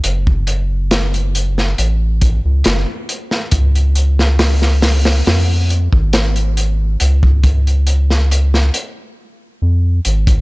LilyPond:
<<
  \new Staff \with { instrumentName = "Analog synth bass" } { \clef bass \time 4/4 \key cis \phrygian \tempo 4 = 69 fis,,2 a,,8. cis,16 fis,,16 r8. | cis,2 eis,8. gis,,4~ gis,,16 | cis,2 r4 eis,8 gis,,8 | }
  \new DrumStaff \with { instrumentName = "Drums" } \drummode { \time 4/4 hh16 bd16 hh8 <hh sn>16 hh16 hh16 sn16 hh8 <hh bd>8 <hh sn>8 hh16 sn16 | <hh bd>16 hh16 hh16 sn16 <hho sn>16 sn16 <hho sn>16 <hho sn>16 <hho sn>8 hh16 bd16 <hh sn>16 hh16 hh8 | hh16 bd16 <hh bd>16 hh16 hh16 sn16 hh16 sn16 hh4 r8 hh16 <hh bd>16 | }
>>